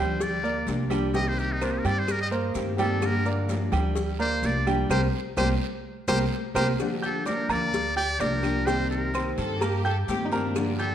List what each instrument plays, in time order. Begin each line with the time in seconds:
Already playing: upright bass D2, nylon-string guitar F3 A#3 D4 G4, grand piano G3 G4 G5, muted trumpet C5
0.20 muted trumpet D5, muted nylon-string guitar stroke, cowbell, high conga, low conga, long guiro, maracas
0.43 grand piano A#3 A#4 D5, high conga, maracas
0.67 upright bass C2, nylon-string guitar F3 A#3 D4 G4, cowbell, high conga, short guiro, maracas
0.90 nylon-string guitar F3 A#3 D4 G4, grand piano G3 G4 G5, high conga, short guiro, claves, maracas
1.13 nylon-string guitar C3 D#3 A#3 C4 G4, grand piano G3 G4 G5, muted trumpet D#5, cowbell, long guiro, maracas
1.28 muted trumpet C5
1.39 muted trumpet G4, high conga, maracas
1.53 muted trumpet D#4
1.60 nylon-string guitar D#3 A#3 C4 G4, grand piano A#3 A#4 C5, muted trumpet D4, cowbell, high conga, short guiro, claves, maracas
1.72 muted trumpet G4
1.79 muted trumpet A#4
1.84 upright bass G2, grand piano G3 G4 G5, muted trumpet D5, cowbell, high conga, short guiro, maracas
1.99 muted trumpet C5
2.07 muted nylon-string guitar stroke, cowbell, high conga, long guiro, claves, maracas
2.11 muted trumpet A#4
2.22 muted trumpet D#5
2.31 grand piano A#3 A#4 C5, high conga, maracas
2.54 upright bass G2, nylon-string guitar D#3 A#3 C4 G4, cowbell, high conga, short guiro, maracas
2.77 nylon-string guitar D#3 A#3 C4 G4, grand piano G3 G4 G5, muted trumpet A4, high conga, short guiro, maracas
3.01 nylon-string guitar D3 F3 A#3 D4 G4, cowbell, high conga, long guiro, claves, maracas
3.06 muted trumpet A#4
3.25 grand piano A#3 A#4 D5, high conga, maracas
3.48 nylon-string guitar F3 A#3 D4 G4, cowbell, high conga, short guiro, maracas
3.72 upright bass D2, grand piano G3 G4 G5, cowbell, high conga, low conga, short guiro, claves, maracas
3.95 muted nylon-string guitar stroke, cowbell, high conga, long guiro, maracas
4.19 grand piano A#3 A#4 D5, muted trumpet C5, high conga, maracas
4.42 upright bass C2, nylon-string guitar F3 A#3 D4 G4, muted trumpet D5, cowbell, high conga, short guiro, maracas
4.67 nylon-string guitar F3 A#3 D4 G4, grand piano G3 G4 G5, high conga, short guiro, claves, maracas
4.89 upright bass C2, nylon-string guitar G3 A#3 C4, grand piano G4 A#4 C5, muted trumpet C5, cowbell, high conga, long guiro, claves, maracas
5.37 upright bass C2, nylon-string guitar G3 A#3 C4, grand piano G4 A#4 C5, muted trumpet C5, cowbell, high conga, long guiro, claves, maracas
6.08 upright bass C2, nylon-string guitar G3 A#3 C4, grand piano G4 A#4 C5, muted trumpet C5, cowbell, high conga, long guiro, claves, maracas
6.54 upright bass C2, nylon-string guitar G3 A#3 C4, grand piano G4 A#4 C5, muted trumpet C5, cowbell, high conga, long guiro, claves, maracas
6.79 nylon-string guitar D3 F3 A#3 D4 G4, cowbell, long guiro, claves, maracas
7.02 grand piano G4 G5 G6, muted trumpet A4, high conga, maracas
7.25 nylon-string guitar F3 A#3 D4 G4, grand piano D4 D5 D6, muted trumpet A#4, cowbell, high conga, short guiro, maracas
7.49 upright bass D2, grand piano A#3 A#4 A#5, muted trumpet D5, cowbell, high conga, low conga, short guiro, claves, maracas
7.73 muted nylon-string guitar stroke, cowbell, high conga, long guiro, maracas
7.96 grand piano G4 G5 G6, muted trumpet D5, high conga, maracas
8.19 upright bass C2, nylon-string guitar F3 A#3 D4 G4, grand piano D4 D5 D6, muted trumpet A#4, cowbell, high conga, short guiro, maracas
8.43 nylon-string guitar F3 A#3 D4 G4, high conga, short guiro, claves, maracas
8.66 nylon-string guitar C3 D#3 A#3 C4 G4, grand piano G3 G4 G5, muted trumpet C5, cowbell, high conga, long guiro, maracas
8.90 muted trumpet A#4, high conga, maracas
9.14 nylon-string guitar D#3 A#3 C4 G4, grand piano C4 C5 C6, cowbell, high conga, short guiro, claves, maracas
9.38 upright bass G2, violin section A4, cowbell, short guiro, maracas
9.60 grand piano A#3 A#4 A#5, violin section G4, muted nylon-string guitar stroke, cowbell, high conga, long guiro, claves, maracas
9.84 grand piano G4 G5 G6, violin section A4, high conga, maracas
10.08 upright bass G2, nylon-string guitar D#3 A#3 C4 G4, violin section G4, cowbell, high conga, short guiro, maracas
10.24 violin section D#4
10.32 nylon-string guitar D#3 A#3 C4 G4, grand piano A#3 A#4 A#5, violin section D4, high conga, short guiro, maracas
10.55 nylon-string guitar D3 F3 A#3 D4 G4, cowbell, high conga, long guiro, claves, maracas
10.79 grand piano G4 G5 G6, muted trumpet A4, high conga, maracas